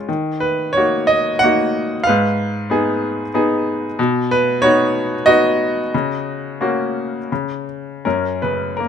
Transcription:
grand piano
Already playing: C#3
0.09 D#3
0.40 B4
0.73 A#3 C#5
0.77 D#4 F#4
1.07 D#5
1.39 A#3 F#5
1.44 D#4 F#4
2.04 B4 F5
2.09 G#2
2.70 B3 D#4 G#4
3.34 B3 D#4 G#4
3.99 B2
4.31 B4
4.62 B3 D#4 F#4 C#5
5.26 B3 D#4 F#4 D#5
5.94 C#3
6.61 A#3 C#4 F#4
7.32 C#3
8.05 F#2 C#4 A#4
8.42 C#3 B4
8.77 A#3 A#4

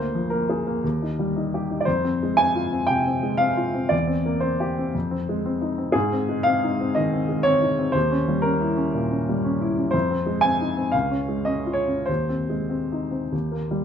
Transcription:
grand piano
Already playing: D2 A#3 C5
0.15 F3
0.30 A#3 A#4
0.49 G#4
0.67 A#3
0.84 D#2
1.02 D#4
1.19 G3
1.36 D#4
1.54 G4
1.70 D#4
1.80 D5
1.85 F2 C5
2.04 C4
2.23 G#3
2.37 C4 G#5
2.55 F4
2.72 C4
2.87 C3 G5
3.06 C4
3.23 G#3
3.38 C4 F5
3.57 F4
3.74 C4
3.89 E2 D5
4.07 C4
4.25 A#3
4.40 C4 C5
4.60 G4
4.78 C4
4.95 F2
5.11 C4
5.29 G#3
5.46 C4
5.61 D#4
5.78 C4
5.92 G#2 G#4
6.12 C4
6.29 G#3
6.43 C4 F5
6.63 D#4
6.80 C4
6.95 D#3 D#5
7.13 C4
7.29 G#3
7.43 C4 C#5
7.62 D#4
7.79 C4
7.92 D#2 C5
8.12 C#4
8.28 G3
8.42 C#4 A#4
8.61 E4
8.77 C#4
8.94 A#2
9.12 C#4
9.29 G3
9.44 C#4
9.61 E4
9.78 C#4
9.91 F2 C5
10.11 C4
10.26 G#3
10.41 C4 G#5
10.61 D#4
10.77 C4
10.92 C#2 F5
11.11 C#4
11.28 G#3
11.45 C#4 D#5
11.66 F4
11.73 C#5
11.88 C#4
12.06 D#2 C5
12.29 C4
12.50 G#3
12.70 C4
12.92 D#4
13.11 C4
13.32 D#2
13.52 A#3
13.71 G3

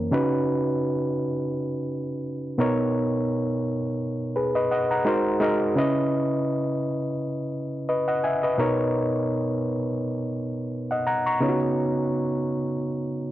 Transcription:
reed electric piano
Already playing: F#2 E3 A#3 C#4 A#4
0.11 C#3 C#4 D#4 F#4 B4
2.58 B2 B3 D#4 A#4 C#5
4.36 G#4 B4
4.55 B4 D#5
4.71 D#5 F#5
4.91 F#5 A#5
5.05 G#3 D#4 F#4 A#4 C5
5.40 G#3 D#4 F#4 A#4 D#5
5.75 C#3 C#4 E4 B4 D#5
7.89 B4 D#5
8.08 D#5 F#5
8.24 E5 G#5
8.43 B4 D#5
8.58 B2 B3 D#4 A#4 C#5
10.91 D#5 F#5
11.07 F#5 A#5
11.26 A#5 C#6
11.40 C#3 B3 D#4 F4 C#5
11.49 F#4

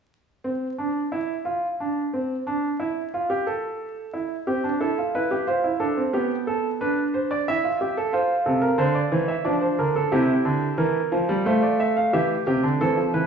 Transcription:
grand piano
0.44 C4
0.78 D4
1.12 E4
1.45 F4
1.80 D4
2.13 C4
2.46 D4
2.79 E4
3.13 F4
3.29 G4
3.46 A4
4.14 E4
4.47 C4 G4
4.64 D4
4.80 E4 A4
4.98 F4
5.15 E4 B4
5.31 G4
5.47 F4 C5
5.64 E4
5.80 D4 A4
5.97 C4
6.13 B3 G4
6.47 A4
6.81 D4 B4
7.14 C5
7.31 D5
7.48 E4 E5
7.64 F4
7.81 G4
7.97 A4
8.13 F4 C5
8.46 C3 A4
8.62 A#4
8.78 D3 C5
8.95 D5
9.12 E3 C5
9.28 E5
9.45 F3 D4 D5
9.61 C5
9.79 D3 A#4
9.96 A4
10.12 C3 E4 G4
10.45 D3
10.78 E3 A#4
11.12 F3
11.29 G3
11.46 A3 F4 C5
11.62 D5
11.80 E5
11.97 F5
12.13 E3 G4 E5
12.47 C3 G4
12.63 D3
12.81 E3 C4 A4
12.97 F3
13.14 E3 B4

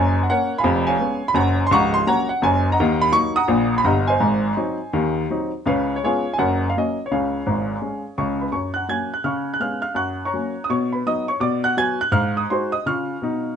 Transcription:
upright piano
Already playing: F#1 F#2 C#5 G#5
0.23 F#5
0.30 A#3 C#4 A#4 C#5 F#5
0.58 F5 G#5 B5
0.64 F1 F2
0.87 C#5 F5 G#5
0.99 G#3 B3 C#4
1.28 B5
1.34 F#1 F#2 C#5 F#5 A#5
1.67 C6
1.71 C#1 C#2 F#5 A#5 C#6
1.94 C6
2.07 F#3 A#3 C#4 C#5 F#5 A#5
2.29 F#5
2.42 F#1 F#2 C#5 G#5
2.72 D#5 F#5 A#5
2.80 D#2 D#3
3.02 B5
3.12 F#3 A#3 D#4 C#6
3.36 F#5 A#5 D#6
3.48 A#1 A#2
3.78 B5
3.84 G1 G2 D#5 F#5 A#5
4.07 C5 D#5 G#5
4.20 G#1 G#2
4.57 F#3 C4 D#4
4.93 D#2 D#3
5.30 F#3 C4 D#4
5.66 C#2 C#3 B4 C#5 F5
5.96 C#5
6.04 G#3 B3 C#4 F4 G#4 C#5
6.33 G#5
6.38 F#1 F#2 A#4 C#5 F#5
6.70 F5
6.77 F#3 A#3 C#4 D#5
7.06 C#5
7.11 C#2 C#3 G#4 C#5 F5
7.47 G#1 G#2
7.82 G#3 C#4
8.18 C#2 C#3 C#5 C#6
8.41 B4 B5
8.52 F#2 C#5 C#6
8.74 F#5 F#6
8.88 F#3 A#3 C#4 G#5 G#6
9.14 F#6
9.24 C#3 F5 C#6 F6
9.54 F#6
9.60 G#3 B3 C#4 F5 F6
9.82 F5 F6
9.95 F#2 F#5 C#6 F#6
10.25 C#5 A#5 C#6
10.34 F#3 A#3 C#4
10.64 D#6
10.69 B2 C#5 C#6
10.93 B4 B5
11.06 F#3 B3 D#4 D#5 D#6
11.28 C#5 C#6
11.40 B2 D5 D6
11.64 F#5 F#6
11.77 F#3 B3 F#4 G#5 G#6
12.01 F#6
12.12 G#2 F5 F6
12.37 D#6
12.50 G#3 D#4 F#4 C5 C6
12.72 D#5 D#6
12.86 C#3 F4 F5 C#6 F6
13.22 B2 D#4

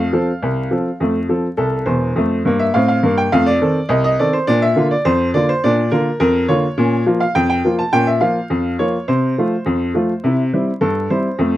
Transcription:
upright piano
Already playing: F5
0.13 F3 C4 A4
0.42 C2
0.71 F3 C4 A4
1.00 F2 A3
1.29 F3 C4 A4
1.57 C2 A4
1.86 E1 E2 C5
2.16 F2 A3
2.45 G2 A#3
2.59 E5
2.74 A2 C4 F5
2.88 F5
3.03 G2 A#3
3.18 G5
3.32 F2 A3 F5
3.46 D5
3.61 D#3 C4 A4
3.89 C2 D#5
4.04 D#5
4.19 D#3 C4 A4 D5
4.33 C5
4.47 A#2 D4 D5
4.62 E5
4.76 D3 A#3 F4
4.91 D5
5.05 F2 C5
5.34 D3 A#3 F4 D5
5.49 C5
5.64 A#2 D4 D5
5.91 D3 A#3 F4 A#4
6.20 F2 A#4
6.48 D3 A#3 F4 C#5
6.78 A#2 C#4
7.06 F3 A#3 F4
7.20 F5
7.35 F2 G5
7.50 G5
7.65 F3 A#3 F4
7.79 A5
7.93 A#2 C#4 G5
8.07 E5
8.21 F3 A#3 F4 F5
8.50 F2
8.79 F3 A#3 F4 C#5
9.08 C3 C5
9.38 F3 A3 F4
9.66 F2
9.94 F3 A3 F4
10.24 C3 E4
10.54 G3 C4 E4
10.81 G2 A4
11.10 G3 C4 E4 C5
11.39 F2 A3

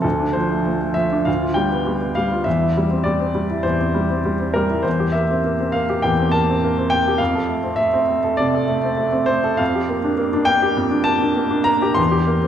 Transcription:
grand piano
0.02 D2 A4
0.20 D4
0.33 F3 C5
0.51 A3
0.66 F3
0.81 A3
0.94 F3 E5
1.12 D4
1.25 D2 F5
1.43 F4
1.54 G3 G5
1.72 B3
1.87 G3
2.02 B3
2.15 G3 F5
2.32 F4
2.44 E2 E5
2.62 E4
2.77 G3
2.91 C4
3.04 G3 D5
3.20 C4
3.35 G3
3.51 E4
3.63 E2 C5
3.81 C4
3.95 G3
4.10 C4
4.25 G3
4.40 C4
4.54 G3 A#4
4.70 E4
4.83 E2 C5
5.00 G4
5.12 A#3 E5
5.31 C4
5.45 A#3
5.60 C4
5.72 A#3 F5
5.89 G4
6.02 E2 G5
6.19 C4
6.31 A#3 A5
6.50 C4
6.64 A#3
6.78 C4
6.90 A#3 G5
7.08 G4
7.18 F2 F5
7.35 A4
7.49 A3
7.64 C4
7.76 A3 E5
7.93 C4
8.08 A3
8.24 A4
8.37 C3 D5
8.55 A4
8.68 A3
8.83 C4
8.97 A3
9.12 C4
9.26 A3 C5
9.44 A4
9.57 F2 F5
9.75 G4
9.89 A#3
10.04 D4
10.18 A#3
10.33 D4
10.45 A#3 G5
10.62 G4
10.77 F2
10.91 D4
11.04 A#3 A5
11.21 D4
11.36 A#3
11.51 D4
11.64 A#3 A#5
11.82 G4
11.94 E2 C6
12.11 G4
12.27 A#3
12.43 C4

